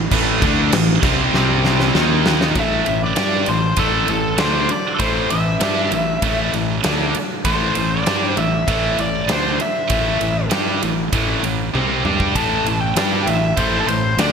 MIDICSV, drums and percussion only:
0, 0, Header, 1, 2, 480
1, 0, Start_track
1, 0, Key_signature, 0, "minor"
1, 0, Tempo, 612245
1, 91, Time_signature, 4, 2, 24, 8
1, 11227, End_track
2, 0, Start_track
2, 0, Title_t, "Drums"
2, 89, Note_on_c, 9, 49, 82
2, 90, Note_on_c, 9, 36, 103
2, 167, Note_off_c, 9, 49, 0
2, 168, Note_off_c, 9, 36, 0
2, 330, Note_on_c, 9, 36, 108
2, 331, Note_on_c, 9, 49, 66
2, 408, Note_off_c, 9, 36, 0
2, 409, Note_off_c, 9, 49, 0
2, 568, Note_on_c, 9, 49, 88
2, 573, Note_on_c, 9, 38, 110
2, 646, Note_off_c, 9, 49, 0
2, 652, Note_off_c, 9, 38, 0
2, 807, Note_on_c, 9, 36, 112
2, 807, Note_on_c, 9, 49, 64
2, 885, Note_off_c, 9, 36, 0
2, 885, Note_off_c, 9, 49, 0
2, 1052, Note_on_c, 9, 38, 70
2, 1131, Note_off_c, 9, 38, 0
2, 1292, Note_on_c, 9, 38, 76
2, 1370, Note_off_c, 9, 38, 0
2, 1411, Note_on_c, 9, 38, 70
2, 1489, Note_off_c, 9, 38, 0
2, 1529, Note_on_c, 9, 38, 95
2, 1608, Note_off_c, 9, 38, 0
2, 1770, Note_on_c, 9, 38, 105
2, 1848, Note_off_c, 9, 38, 0
2, 1890, Note_on_c, 9, 38, 88
2, 1969, Note_off_c, 9, 38, 0
2, 2002, Note_on_c, 9, 51, 75
2, 2003, Note_on_c, 9, 36, 100
2, 2081, Note_off_c, 9, 36, 0
2, 2081, Note_off_c, 9, 51, 0
2, 2242, Note_on_c, 9, 51, 59
2, 2321, Note_off_c, 9, 51, 0
2, 2478, Note_on_c, 9, 51, 84
2, 2484, Note_on_c, 9, 38, 104
2, 2557, Note_off_c, 9, 51, 0
2, 2562, Note_off_c, 9, 38, 0
2, 2714, Note_on_c, 9, 51, 71
2, 2792, Note_off_c, 9, 51, 0
2, 2952, Note_on_c, 9, 51, 82
2, 2957, Note_on_c, 9, 36, 100
2, 3030, Note_off_c, 9, 51, 0
2, 3036, Note_off_c, 9, 36, 0
2, 3198, Note_on_c, 9, 51, 62
2, 3276, Note_off_c, 9, 51, 0
2, 3433, Note_on_c, 9, 51, 89
2, 3438, Note_on_c, 9, 38, 120
2, 3511, Note_off_c, 9, 51, 0
2, 3517, Note_off_c, 9, 38, 0
2, 3677, Note_on_c, 9, 51, 66
2, 3755, Note_off_c, 9, 51, 0
2, 3917, Note_on_c, 9, 36, 90
2, 3917, Note_on_c, 9, 51, 90
2, 3995, Note_off_c, 9, 36, 0
2, 3995, Note_off_c, 9, 51, 0
2, 4158, Note_on_c, 9, 51, 70
2, 4236, Note_off_c, 9, 51, 0
2, 4395, Note_on_c, 9, 51, 97
2, 4401, Note_on_c, 9, 38, 111
2, 4474, Note_off_c, 9, 51, 0
2, 4479, Note_off_c, 9, 38, 0
2, 4638, Note_on_c, 9, 51, 73
2, 4717, Note_off_c, 9, 51, 0
2, 4878, Note_on_c, 9, 51, 99
2, 4879, Note_on_c, 9, 36, 102
2, 4956, Note_off_c, 9, 51, 0
2, 4957, Note_off_c, 9, 36, 0
2, 5124, Note_on_c, 9, 51, 60
2, 5202, Note_off_c, 9, 51, 0
2, 5361, Note_on_c, 9, 51, 97
2, 5366, Note_on_c, 9, 38, 116
2, 5439, Note_off_c, 9, 51, 0
2, 5445, Note_off_c, 9, 38, 0
2, 5602, Note_on_c, 9, 51, 70
2, 5681, Note_off_c, 9, 51, 0
2, 5838, Note_on_c, 9, 51, 88
2, 5840, Note_on_c, 9, 36, 99
2, 5917, Note_off_c, 9, 51, 0
2, 5918, Note_off_c, 9, 36, 0
2, 6078, Note_on_c, 9, 51, 66
2, 6156, Note_off_c, 9, 51, 0
2, 6322, Note_on_c, 9, 51, 82
2, 6328, Note_on_c, 9, 38, 110
2, 6401, Note_off_c, 9, 51, 0
2, 6406, Note_off_c, 9, 38, 0
2, 6562, Note_on_c, 9, 51, 61
2, 6640, Note_off_c, 9, 51, 0
2, 6803, Note_on_c, 9, 36, 103
2, 6805, Note_on_c, 9, 51, 89
2, 6881, Note_off_c, 9, 36, 0
2, 6883, Note_off_c, 9, 51, 0
2, 7044, Note_on_c, 9, 51, 59
2, 7123, Note_off_c, 9, 51, 0
2, 7282, Note_on_c, 9, 51, 95
2, 7287, Note_on_c, 9, 38, 111
2, 7360, Note_off_c, 9, 51, 0
2, 7366, Note_off_c, 9, 38, 0
2, 7525, Note_on_c, 9, 51, 66
2, 7603, Note_off_c, 9, 51, 0
2, 7759, Note_on_c, 9, 51, 84
2, 7763, Note_on_c, 9, 36, 103
2, 7837, Note_off_c, 9, 51, 0
2, 7841, Note_off_c, 9, 36, 0
2, 8003, Note_on_c, 9, 51, 65
2, 8081, Note_off_c, 9, 51, 0
2, 8239, Note_on_c, 9, 51, 97
2, 8244, Note_on_c, 9, 38, 116
2, 8317, Note_off_c, 9, 51, 0
2, 8323, Note_off_c, 9, 38, 0
2, 8487, Note_on_c, 9, 51, 70
2, 8566, Note_off_c, 9, 51, 0
2, 8723, Note_on_c, 9, 36, 103
2, 8723, Note_on_c, 9, 51, 90
2, 8801, Note_off_c, 9, 51, 0
2, 8802, Note_off_c, 9, 36, 0
2, 8967, Note_on_c, 9, 51, 65
2, 9045, Note_off_c, 9, 51, 0
2, 9212, Note_on_c, 9, 48, 67
2, 9290, Note_off_c, 9, 48, 0
2, 9448, Note_on_c, 9, 45, 78
2, 9526, Note_off_c, 9, 45, 0
2, 9564, Note_on_c, 9, 36, 86
2, 9643, Note_off_c, 9, 36, 0
2, 9686, Note_on_c, 9, 36, 86
2, 9687, Note_on_c, 9, 51, 84
2, 9764, Note_off_c, 9, 36, 0
2, 9765, Note_off_c, 9, 51, 0
2, 9929, Note_on_c, 9, 51, 65
2, 10007, Note_off_c, 9, 51, 0
2, 10164, Note_on_c, 9, 51, 95
2, 10170, Note_on_c, 9, 38, 111
2, 10243, Note_off_c, 9, 51, 0
2, 10248, Note_off_c, 9, 38, 0
2, 10406, Note_on_c, 9, 51, 64
2, 10485, Note_off_c, 9, 51, 0
2, 10641, Note_on_c, 9, 51, 89
2, 10642, Note_on_c, 9, 36, 96
2, 10720, Note_off_c, 9, 36, 0
2, 10720, Note_off_c, 9, 51, 0
2, 10885, Note_on_c, 9, 51, 66
2, 10964, Note_off_c, 9, 51, 0
2, 11121, Note_on_c, 9, 51, 96
2, 11127, Note_on_c, 9, 38, 114
2, 11199, Note_off_c, 9, 51, 0
2, 11205, Note_off_c, 9, 38, 0
2, 11227, End_track
0, 0, End_of_file